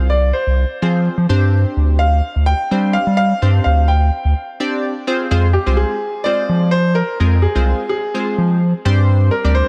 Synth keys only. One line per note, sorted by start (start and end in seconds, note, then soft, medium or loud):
0.82 1.15 C4 medium
0.82 1.15 F4 medium
0.82 1.15 G#4 medium
0.82 1.15 C5 medium
1.29 2.05 C4 medium
1.29 2.05 D4 medium
1.29 2.05 G4 medium
1.29 2.05 C5 loud
2.71 3.04 C4 medium
2.71 3.04 D4 medium
2.71 3.04 G4 medium
2.71 3.04 C5 medium
3.42 3.86 C4 medium
3.42 3.86 D4 medium
3.42 3.86 G4 medium
3.42 3.86 C5 medium
4.60 4.93 C4 medium
4.60 4.93 D4 medium
4.60 4.93 G4 medium
4.60 4.93 D5 loud
5.07 5.26 C4 loud
5.07 5.26 F4 medium
5.07 5.26 G#4 medium
5.07 5.26 C5 loud
5.31 5.47 G#3 medium
5.31 5.47 C4 medium
5.31 5.48 F4 medium
5.31 5.48 G#4 medium
5.31 5.48 C5 loud
5.66 5.94 G#3 medium
5.66 5.94 C4 medium
5.66 5.94 F4 medium
5.66 5.94 G#4 medium
5.66 5.94 C5 medium
6.25 6.70 G#3 medium
6.25 6.70 C4 medium
6.25 6.70 F4 medium
6.25 6.70 G#4 medium
6.25 6.70 C5 medium
7.20 7.36 G#3 medium
7.20 7.37 C4 medium
7.20 7.37 F4 medium
7.20 7.37 G#4 medium
7.20 7.37 A#4 medium
7.55 7.83 G#3 medium
7.55 7.83 C4 medium
7.55 7.83 F4 medium
7.55 7.83 G#4 medium
7.55 7.83 C5 medium
8.14 8.58 G#3 medium
8.14 8.59 C4 medium
8.14 8.59 F4 medium
8.14 8.59 G#4 medium
8.14 8.59 C5 medium
8.85 9.32 G3 medium
8.85 9.33 C4 medium
8.85 9.33 D4 medium
8.85 9.33 G4 medium
8.85 9.33 C5 loud
9.44 9.68 G3 medium
9.44 9.68 C4 medium
9.44 9.68 D4 medium
9.44 9.68 G4 medium
9.44 9.68 D5 medium